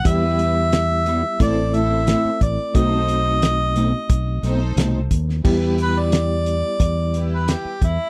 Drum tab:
CC |----------------|----------------|x---------------|
HH |x-x-x-x-x-x-x-x-|x-x-x-x-x-x-x-x-|--x-x-x-x-x-x-x-|
SD |----o-------o---|----o-------o--o|----o-------o---|
BD |o-------o-----o-|o-------o-----o-|o-------o-----o-|